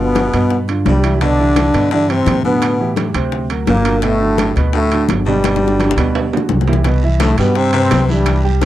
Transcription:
Already playing: G1 B2
0.00 D3 B3 D4 F4
0.15 high bongo, high conga, high timbale, low timbale
0.33 G2 B2 B3 B4, high bongo, high conga, high timbale
0.50 high bongo, high conga
0.68 D3 D4 F4, high bongo, high conga, high timbale
0.85 C2 G2 G3, high bongo, low bongo, high conga, high timbale, low timbale
1.03 E3 E4 G4, high bongo, high timbale
1.21 B2 D3 B3 D4 B4, high bongo, high conga, high timbale
1.39 E3 E4 G4, high conga
1.56 high bongo, high conga, high timbale, low timbale
1.74 G2 B2 B3 B4, high bongo, high timbale
1.91 D3 E3 D4 E4 G4, high bongo, high conga
2.08 C3 E3 C4 E4 G4, high bongo, high conga, high timbale
2.26 A2, high bongo, low bongo, high conga, high timbale, low timbale
2.43 B2 D3 B3 D4 B4, high bongo, high conga
2.61 high bongo, high conga, high timbale
2.79 E3 E4 G4, high conga
2.96 high bongo, high conga, high timbale, low timbale
3.14 D2 C3 C4 C5, high bongo, high conga, high timbale
3.32 high bongo, high conga
3.50 F#3 F#4 A#4, high bongo, high conga, high timbale
3.67 G1 A#2 A#3, high bongo, low bongo, high conga, high timbale, low timbale
3.85 D3 D4 F#4, high bongo, high timbale
4.02 A2 B2 A3 B3 B4, high bongo, high conga, high timbale
4.21 D3 D4 F#4, high conga
4.38 high bongo, high conga, high timbale, low timbale
4.56 D2 B2 B3 B4, high bongo, high timbale
4.73 A2 D3 A3 D4 F#4, high bongo, high conga
4.91 D3 D4 F#4, high bongo, high conga, high timbale
5.08 G1, high bongo, low bongo, high conga, high timbale, low timbale
5.25 G2 B2 G3 B3 B4, high bongo, high conga
5.44 high bongo, high conga, high timbale
5.56 high bongo
5.62 D3 D4 F#4, high conga
5.68 high bongo
5.80 high conga, high timbale, low timbale
5.91 low bongo
5.97 D2 B2 B3 B4, high conga, high timbale
6.15 high conga, high timbale
6.33 D3 D4 F#4, high conga, low timbale
6.37 low bongo
6.49 C2, low bongo, high conga
6.61 low bongo
6.68 E3 E4 G4, low timbale
6.73 low bongo
6.84 B2 B3 B4, high bongo, high conga, high timbale, long guiro
7.03 E3 E4 E5, high conga
7.20 A2 A3, high bongo, high conga, high timbale, low timbale, short guiro
7.38 G2 B2 G3 B3 G4 G5, high bongo, high timbale, short guiro
7.55 C3 C4, high bongo, high conga, long guiro
7.73 C3 C4 B4, high bongo, high conga, high timbale
7.90 C2, high bongo, low bongo, high conga, high timbale, low timbale, short guiro
8.08 G2 E3 G3 E4 E5, high bongo, high conga, short guiro
8.26 high bongo, high conga, high timbale, long guiro
8.44 G3 G4 G5, high conga
8.61 C3, high bongo, high conga, short guiro

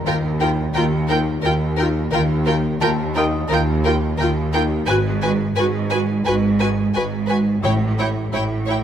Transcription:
Already playing: A#4 A#5
0.05 D#2 D#3 F4 A#4 G5
0.40 D#4 F4 A#4 G5
0.74 D#2 D#3 F4 A#4 G5
1.08 D#4 F4 A#4 G5
1.42 D#2 D#3 F4 A#4 G5
1.77 D#4 F4 A#4 G5
2.12 D#2 D#3 F4 A#4 G5
2.46 D#3 F4 A#4 G5
2.81 D#2 D#3 F4 A#4 G5 A5
3.15 D#4 F4 A#4 D#5 G5 D#6
3.49 D#2 D#3 F4 A#4 G5
3.83 D#4 F4 A#4 G5
4.18 D#2 D#3 F4 A#4 G5
4.53 D#4 F4 A#4 G5
4.86 G#1 G#2 F#4 B4 G#5 F#6
5.21 G#2 F#4 B4 G#5
5.56 G#1 G#2 F#4 B4 G#5
5.90 G#3 F#4 B4 G#5
6.25 G#1 G#2 F#4 B4 G#5
6.59 G#3 F#4 B4 G#5
6.94 G#1 G#2 F#4 B4 G#5
7.28 G#3 F#4 B4 G#5
7.63 A1 A2 E4 C#5 G5
7.99 A2 E4 C#5 G5
8.33 A1 A2 E4 C#5 G5
8.67 A3 E4 C#5 G5

